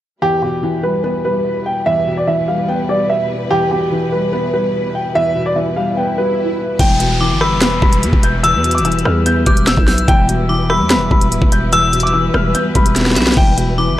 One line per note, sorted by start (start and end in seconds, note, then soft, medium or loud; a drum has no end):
0.22 1.25 E2 medium
0.22 6.75 B2 medium
0.22 6.75 G3 medium
0.22 6.75 E4 medium
0.22 0.40 G4 loud
0.22 6.75 B4 medium
0.42 1.45 B2 medium
0.42 0.81 G4 medium
0.63 1.66 E3 medium
0.83 1.23 G3 medium
0.83 1.02 B4 medium
1.04 2.07 B3 medium
1.04 1.22 B4 medium
1.24 2.27 G3 medium
1.24 1.63 B4 medium
1.66 1.84 G5 medium
1.86 2.89 E2 medium
1.86 2.15 E5 loud
2.07 3.10 B2 medium
2.17 2.26 D5 medium
2.27 3.30 E3 medium
2.27 2.46 E5 medium
2.48 2.87 G3 medium
2.48 2.66 F5 medium
2.68 3.51 B3 loud
2.68 2.87 G5 medium
2.89 3.51 G3 medium
2.89 3.08 D5 medium
3.10 3.28 E5 medium
3.50 4.53 E2 loud
3.50 3.69 G4 loud
3.50 swell medium
3.71 4.74 B2 medium
3.71 4.10 G4 medium
3.92 4.94 E3 medium
4.12 4.52 G3 medium
4.12 4.31 B4 medium
4.33 5.36 B3 medium
4.33 4.51 B4 medium
4.53 5.56 G3 medium
4.53 4.92 B4 medium
4.95 5.13 G5 medium
5.15 6.18 E2 medium
5.15 5.44 E5 loud
5.35 6.38 B2 medium
5.46 5.55 D5 medium
5.56 6.59 E3 medium
5.56 5.74 E5 medium
5.76 6.16 G3 medium
5.76 5.95 F5 medium
5.97 6.79 B3 loud
5.97 6.16 G5 medium
6.18 6.79 G3 medium
6.18 6.76 B4 medium
6.79 7.32 E1 loud
6.79 7.82 E2 medium
6.79 14.00 G3 medium
6.79 10.05 B3 medium
6.79 14.00 E4 medium
6.79 10.05 B4 medium
6.79 6.98 G5 loud
6.79 kick loud
6.79 closed hi-hat medium
6.79 crash loud
6.79 downlifter medium
7.00 8.03 B2 medium
7.00 7.38 G5 medium
7.00 closed hi-hat medium
7.20 8.23 E3 loud
7.20 7.40 D6 medium
7.31 7.58 G1 loud
7.41 7.81 G3 medium
7.41 7.59 B5 medium
7.41 8.40 E6 medium
7.41 cross-stick loud
7.56 7.81 E1 loud
7.61 8.64 B3 loud
7.61 7.80 B5 medium
7.61 snare loud
7.61 closed hi-hat medium
7.82 8.04 E1 loud
7.82 8.85 G3 medium
7.82 8.21 B5 medium
7.82 kick loud
7.93 closed hi-hat medium
8.03 8.12 E2 loud
8.03 closed hi-hat medium
8.13 8.56 E1 loud
8.13 kick loud
8.23 8.42 G6 medium
8.23 closed hi-hat medium
8.43 9.47 E2 medium
8.43 8.73 E6 loud
8.43 8.83 E6 loud
8.43 closed hi-hat medium
8.54 8.81 E2 loud
8.64 9.67 B2 medium
8.64 closed hi-hat medium
8.71 8.84 D6 medium
8.71 closed hi-hat medium
8.78 9.04 E1 loud
8.78 closed hi-hat medium
8.85 9.88 E3 medium
8.85 9.03 E6 medium
8.85 closed hi-hat medium
8.92 closed hi-hat medium
8.99 closed hi-hat soft
9.05 9.45 E2 loud
9.05 9.45 G3 medium
9.05 9.24 F6 medium
9.05 cross-stick loud
9.26 10.08 B3 loud
9.26 9.45 G6 medium
9.26 closed hi-hat medium
9.46 9.76 E1 loud
9.46 10.08 G3 medium
9.46 9.65 D6 medium
9.46 9.85 G6 medium
9.46 kick loud
9.46 closed hi-hat medium
9.57 closed hi-hat medium
9.67 9.86 E6 medium
9.67 snare loud
9.67 closed hi-hat medium
9.77 10.07 B1 loud
9.77 kick loud
9.88 10.07 G6 medium
9.88 snare medium
9.88 open hi-hat medium
9.98 closed hi-hat medium
10.08 10.82 E1 loud
10.08 11.11 E2 loud
10.08 13.34 B3 medium
10.08 14.00 B4 medium
10.08 10.27 G5 loud
10.08 kick loud
10.08 closed hi-hat loud
10.28 11.31 B2 medium
10.28 10.67 G5 medium
10.28 closed hi-hat medium
10.49 11.52 E3 loud
10.49 10.69 D6 medium
10.70 11.09 G3 medium
10.70 10.88 B5 medium
10.70 11.69 E6 medium
10.70 cross-stick medium
10.80 10.97 E2 loud
10.90 11.93 B3 loud
10.90 11.09 B5 medium
10.90 snare loud
10.90 closed hi-hat medium
10.96 11.10 E1 loud
11.11 11.33 E1 loud
11.11 12.14 G3 medium
11.11 11.50 B5 medium
11.11 kick loud
11.21 closed hi-hat medium
11.31 11.41 D1 loud
11.31 closed hi-hat medium
11.42 12.30 E1 loud
11.42 kick loud
11.52 11.71 G6 medium
11.52 closed hi-hat medium
11.73 12.75 E2 loud
11.73 12.02 E6 loud
11.73 12.11 E6 loud
11.73 closed hi-hat loud
11.93 12.96 B2 medium
11.93 closed hi-hat medium
12.00 12.12 D6 medium
12.00 closed hi-hat medium
12.07 closed hi-hat soft
12.13 13.16 E3 loud
12.13 12.32 E6 medium
12.34 12.54 E1 loud
12.34 12.74 G3 medium
12.34 12.52 F6 medium
12.34 cross-stick loud
12.55 13.37 B3 loud
12.55 12.73 G6 medium
12.55 closed hi-hat medium
12.75 13.18 E1 loud
12.75 13.37 G3 medium
12.75 13.33 B5 medium
12.75 kick loud
12.75 closed hi-hat medium
12.86 closed hi-hat medium
12.96 snare medium
12.96 closed hi-hat medium
13.01 snare medium
13.06 snare medium
13.11 snare medium
13.16 13.36 B1 loud
13.16 13.36 B5 medium
13.16 snare medium
13.16 closed hi-hat medium
13.22 snare medium
13.27 snare loud
13.27 closed hi-hat soft
13.32 snare medium
13.32 closed hi-hat medium
13.37 13.90 E1 loud
13.37 14.00 E2 loud
13.37 14.00 B3 medium
13.37 13.56 G5 loud
13.37 kick loud
13.37 crash medium
13.57 14.00 B2 medium
13.57 13.96 G5 medium
13.57 closed hi-hat medium
13.78 14.00 E3 loud
13.78 13.98 D6 medium
13.88 14.00 G1 loud